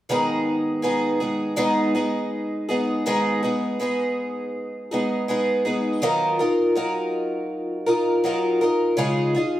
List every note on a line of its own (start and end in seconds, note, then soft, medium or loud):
0.09 0.83 G#2 medium
0.09 1.56 D#3 medium
0.09 0.82 G#3 medium
0.09 0.83 B3 medium
0.09 0.83 D#4 medium
0.09 0.84 G#4 medium
0.82 1.20 G#3 medium
0.82 1.21 B3 soft
0.82 1.20 D#4 medium
0.82 1.19 G#4 medium
1.20 1.56 G#3 soft
1.20 1.56 B3 soft
1.20 1.56 D#4 soft
1.20 1.57 G#4 soft
1.56 1.94 G#2 medium
1.56 1.94 D#3 medium
1.56 1.95 G#3 medium
1.56 1.95 B3 medium
1.56 1.94 D#4 medium
1.56 1.93 G#4 medium
1.95 2.71 G#3 soft
1.95 2.70 B3 soft
1.95 2.69 D#4 soft
1.95 2.68 G#4 soft
2.69 3.05 G#3 soft
2.69 3.06 B3 soft
2.69 3.06 D#4 soft
2.69 3.06 G#4 soft
3.06 3.43 G#2 medium
3.06 3.43 D#3 medium
3.06 3.43 G#3 medium
3.06 3.43 B3 medium
3.06 3.42 D#4 medium
3.06 3.42 G#4 medium
3.43 3.78 G#3 soft
3.43 3.79 B3 soft
3.43 3.81 D#4 soft
3.43 3.80 G#4 soft
3.80 4.91 G#3 medium
3.80 4.92 B3 medium
3.80 4.92 D#4 medium
3.80 4.90 G#4 medium
4.91 5.27 G#3 soft
4.91 5.28 B3 soft
4.91 5.29 D#4 soft
4.91 5.28 G#4 medium
5.28 5.65 G#3 medium
5.28 5.66 B3 medium
5.28 5.64 D#4 medium
5.28 5.64 G#4 medium
5.65 6.02 G#3 soft
5.65 6.02 B3 soft
5.65 6.02 D#4 soft
5.65 6.02 G#4 medium
6.02 6.39 D#3 medium
6.02 6.40 F#3 medium
6.02 6.40 D#4 medium
6.02 6.39 F4 medium
6.02 6.38 A#4 medium
6.39 6.75 D#4 soft
6.39 6.76 F4 medium
6.39 6.76 A#4 soft
6.75 7.87 F#3 medium
6.75 7.88 D#4 medium
6.75 7.87 F4 medium
6.75 7.85 A#4 medium
7.87 8.24 D#4 soft
7.87 8.25 F4 soft
7.87 8.24 A#4 medium
8.24 8.61 F#3 medium
8.24 8.62 D#4 medium
8.24 8.61 F4 medium
8.24 8.60 A#4 medium
8.61 8.97 D#4 soft
8.61 8.97 F4 soft
8.61 8.98 A#4 medium
8.97 9.35 C#3 medium
8.97 9.35 G#3 medium
8.97 9.36 D#4 medium
8.97 9.35 F4 medium
8.97 9.33 G#4 medium
9.35 9.60 D#4 soft
9.35 9.60 F4 soft
9.35 9.60 G#4 soft